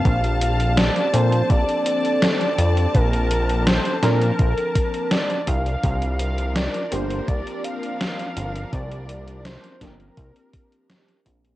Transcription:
<<
  \new Staff \with { instrumentName = "Soft synth lead" } { \time 4/4 \key bes \major \tempo 4 = 83 f''8 f''8 d''8 c''8 d''8 d''4. | bes'4 c''8 bes'4. d''8 f''8~ | f''8 f''8 d''8 c''8 d''8 f''4. | d''4 c''8 bes'2 r8 | }
  \new Staff \with { instrumentName = "String section" } { \time 4/4 \key bes \major <d c' a''>1~ | <d c' a''>2.~ <d c' a''>8 <f d' bes'>8~ | <f d' bes'>1~ | <f d' bes'>1 | }
  \new Staff \with { instrumentName = "FM electric piano" } { \time 4/4 \key bes \major <f bes c' d' g'>4. <f bes c' d' a'>4 r4. | r4. <f bes c' d' bes'>4 r4. | r4. <f bes c' d' g'>4 r4. | r4. <f bes c' d' g'>4 r4 <f bes c' d' f'>8 | }
  \new Staff \with { instrumentName = "Analog synth bass" } { \clef bass \time 4/4 \key bes \major bes,,4 r8 bes,8 bes,,8 r4 f,8 | bes,,4 r8 bes,8 bes,,8 r4 c,8 | c,4 r8 g,,8 c,8 r4 g,,8 | c,4 r8 g,,8 c,8 r4 bes,,8 | }
  \new DrumStaff \with { instrumentName = "Drums" } \drummode { \time 4/4 <hh bd>16 hh16 hh16 hh16 <hh sn>16 hh16 hh16 hh16 <hh bd>16 hh16 hh16 hh16 <hh sn>16 hh16 hh16 hh16 | <hh bd>16 hh16 hh16 hh16 <hh sn>16 hh16 <hh sn>16 hh16 <hh bd>16 hh16 <hh bd>16 hh16 <hh sn>16 hh16 <hh bd>16 hh16 | <hh bd>16 hh16 hh16 hh16 <hh sn>16 hh16 hh16 hh16 <hh bd>16 hh16 hh16 hh16 <hh sn>16 hh16 hh16 hh16 | <hh bd>16 hh16 hh16 hh16 <hh sn>16 hh16 <hh bd sn>16 hh16 <hh bd>16 hh16 <hh bd>16 hh16 <hh sn>16 hh16 <hh bd>16 hh16 | }
>>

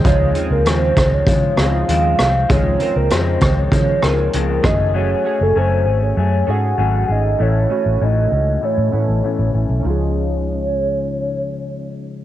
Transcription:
<<
  \new Staff \with { instrumentName = "Soft synth lead" } { \time 4/4 \key des \major \tempo 4 = 98 des''8. bes'16 c''8. des''8. f''4 f''8 | des''8. bes'16 c''8. des''8. bes'4 ees''8 | des''8. a'16 c''8. des''8. ges''4 ees''8 | cis''4 ees''4 cis''4. r8 |
des''1 | }
  \new Staff \with { instrumentName = "Synth keys" } { \time 4/4 \key des \major <c' ees' f' aes'>8 <c' ees' f' aes'>4. r8 <c' ees' fes' f' aes'>4 r8 | <c' ees' f' aes'>8 <c' ees' f' bes'>4. r8 <c' ees' f' aes'>4 <a des' ges' aes'>8~ | <a des' ges' aes'>8 <a des' ges' aes'>4. r8 <des' ges' aes' a'>4 r8 | <a cis' e' a'>8 <a cis' e' ges'>4. r8 <a ces' cis' e' a'>4 r8 |
<des' ees' f' aes'>1 | }
  \new Staff \with { instrumentName = "Clean electric guitar" } { \clef bass \time 4/4 \key des \major <des f aes>8 <f aes c'>8 <des f aes c'>8 <f aes c'>8 <des f aes>8 <f aes c'>8 <des f aes c'>8 <f aes c'>8 | <des f aes>8 <f aes c'>8 <des f aes c'>8 <f aes c'>8 <des f aes>8 <f aes c'>8 <des f aes c'>8 <a des' aes'>8 | <ges a des' aes'>8 <a des' aes'>8 <ges a des' aes'>8 <a des' aes'>8 <ges a des' aes'>8 <des' aes'>8 <ges a des' aes'>8 <a des' aes'>8 | <a, e a cis'>8 <e a cis'>8 <a, e a cis'>8 <e a cis'>8 <a, e a cis'>8 <e a cis'>8 <a, e a cis'>8 <e a cis'>8 |
<des f aes>1 | }
  \new Staff \with { instrumentName = "Fingered electric bass" } { \clef bass \time 4/4 \key des \major des,8 r16 des,16 ees,8 des,8 des8 des,8 ees,8 c,8 | des,8 r16 des,16 f,8 des,8 des8 des,8 des,8 ges,,8~ | ges,,8 r16 ges,,16 ges,,8 aes,,8 ges,8 aes,8 aes,,8 aes,,8 | a,,8 r16 a,,16 a,,8 cis,8 r16 a,16 a,16 a,,16 r16 a,,16 a,,16 ces,16 |
des,1 | }
  \new DrumStaff \with { instrumentName = "Drums" } \drummode { \time 4/4 <hh bd>8 hh8 <hh ss>8 <hh bd ss>8 <hh bd>8 <hh ss>8 hh8 <hh ss>8 | <hh bd>8 hh8 <hh ss>8 <hh bd ss>8 <hh bd>8 <hh ss>8 hh8 <hh bd ss>8 | r4 r4 r4 r4 | r4 r4 r4 r4 |
r4 r4 r4 r4 | }
>>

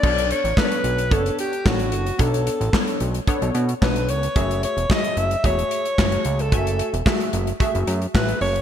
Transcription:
<<
  \new Staff \with { instrumentName = "Alto saxophone" } { \time 4/4 \key b \minor \tempo 4 = 111 d''8 cis''8 b'4 a'8 g'8 fis'4 | a'4. r4. b'8 cis''8~ | cis''8 cis''8 dis''8 e''8 cis''4.~ cis''16 a'16~ | a'8. r2 r16 b'8 cis''8 | }
  \new Staff \with { instrumentName = "Analog polysynth" } { \time 4/4 \key b \minor <b d' a' cis''>8. r16 <b d' a' b' cis''>8. r16 <b d' a' cis''>8. r16 <b d' a' cis''>8. r16 | <b d' a' cis''>8. r16 <b d' a' cis''>8. r16 <b d' a' cis''>8. r16 <b d' a' cis''>8. r16 | <a fis' gis' e''>8. r16 <a fis' gis' dis'' e''>8. r16 <a fis' gis' e''>8. r16 <a fis' gis' cis''>8. r16 | <a fis' e'' gis''>8. r16 <a fis' gis' e''>8. r16 <a fis' gis' e''>8. r16 <a fis' gis' e''>8. r16 | }
  \new Staff \with { instrumentName = "Analog synth bass" } { \clef bass \time 4/4 \key b \minor b,,8. a,,16 r8 b,,8 fis,,8 r8 a,,8 fis,,8 | b,,8. a,,16 r8 b,,8 r16 b,,16 b,8 b,,8 cis,8 | fis,,8. e,,16 r8 fis,,8 e,,8 r8 fis,,8 cis,8 | fis,,8. e,,16 r8 fis,,8 r16 fis,,16 fis,8 a,,8 fis,,8 | }
  \new DrumStaff \with { instrumentName = "Drums" } \drummode { \time 4/4 <cymc bd>16 hh16 hh16 hh16 <hc bd sn>16 hh16 hh16 hh16 <hh bd>16 hh16 hh16 hh16 <hc bd sn>16 hh16 hh16 hh16 | <hh bd>16 hh16 hh16 hh16 <hc bd sn>16 hh16 hh16 hh16 <hh bd>16 hh16 hh16 hh16 <hc bd sn>16 hh16 hh16 hh16 | <hh bd>16 hh16 hh16 hh16 <hc bd sn>16 hh16 hh16 hh16 <hh bd>16 hh16 hh16 hh16 <hc bd sn>16 hh16 hh16 hh16 | <hh bd>16 hh16 hh16 hh16 <hc bd sn>16 hh16 hh16 hh16 <hh bd>16 hh16 hh16 hh16 <hc bd sn>16 hh16 hho16 hh16 | }
>>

